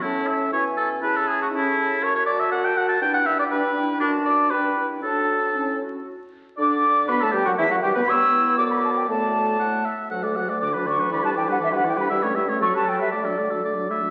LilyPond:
<<
  \new Staff \with { instrumentName = "Flute" } { \time 2/4 \key a \major \tempo 4 = 120 a''4 gis''4 | a''4 a''4 | \key d \major r8 a''4 a''8 | g''8 g''4 g''8 |
a''4 g''4 | a''4 a''8 r8 | r4 d'''4 | b''16 a''16 g''16 fis''16 e''16 fis''16 g''16 b''16 |
e'''4 d'''16 b''16 a''16 g''16 | a''4. r8 | r4 d'''8 cis'''8 | b''16 a''16 g''16 fis''16 e''16 fis''16 g''16 b''16 |
r4 cis'''16 a''16 g''16 e''16 | d''4 r4 | }
  \new Staff \with { instrumentName = "Oboe" } { \time 2/4 \key a \major e'8 e''8 cis''8 a'8 | b'16 a'16 gis'16 fis'16 e'4 | \key d \major cis''16 cis''16 d''16 e''16 fis''16 g''16 fis''16 a''16 | g''16 fis''16 e''16 d''16 b'4 |
d'8 d''8 b'8. r16 | a'4. r8 | r4 d''4 | b'16 a'16 g'16 fis'16 e'16 fis'16 g'16 b'16 |
cis''4 d''4 | d''4 fis''8 e''8 | fis''16 d''16 fis''16 d''16 d''16 b'16 d''16 b'16 | d''16 b'16 d''16 b'16 d''16 b'16 d''16 b'16 |
e''16 cis''16 e''16 cis''16 a'16 b'16 a'16 b'16 | d''16 a'16 d''16 a'16 d''8 e''8 | }
  \new Staff \with { instrumentName = "Clarinet" } { \time 2/4 \key a \major cis'2~ | cis'4 a'4 | \key d \major fis'2 | e'4 d'8 e'8 |
fis'8 r8 d'8 e'8 | fis'4 e'8 fis'8 | r4 d''4 | b'16 a'16 g'16 fis'16 e'16 fis'16 g'16 b'16 |
g'8 e'8 fis'4 | fis'4 e'8 r8 | fis'16 a'16 fis'16 a'16 fis'16 d'16 fis'16 d'16 | e'16 d'16 e'16 d'16 e'16 d'16 e'16 d'16 |
e'16 cis'16 e'16 cis'16 fis'16 g'16 fis'16 g'16 | fis'16 d'16 fis'16 d'16 fis'16 d'16 fis'16 d'16 | }
  \new Staff \with { instrumentName = "French horn" } { \clef bass \time 2/4 \key a \major cis'4 e'4 | e'4 cis'4 | \key d \major r8 fis'4 fis'8 | d'8 d'4 d'8 |
d'4 d'4 | d'4 cis'8 r8 | r4 d'4 | b16 a16 g16 fis16 e16 fis16 g16 b16 |
b2 | a4 a8 r8 | fis16 a16 fis16 a16 d16 fis16 d16 fis16 | e16 g16 e16 g16 e16 g16 e16 g16 |
g16 a16 g16 a16 fis16 g16 fis16 g16 | a16 fis16 a16 fis16 a16 fis16 a16 fis16 | }
  \new Staff \with { instrumentName = "Bassoon" } { \clef bass \time 2/4 \key a \major a,4 b,4 | cis2 | \key d \major fis,4 fis,4 | g,4 g,4 |
fis,4 g,4 | a,4. r8 | r4 d4 | b,16 a,16 g,16 fis,16 e,16 fis,16 g,16 b,16 |
g,4 fis,4 | a,4 a,8 r8 | d,2~ | d,2 |
g,4 a,4 | d4. r8 | }
>>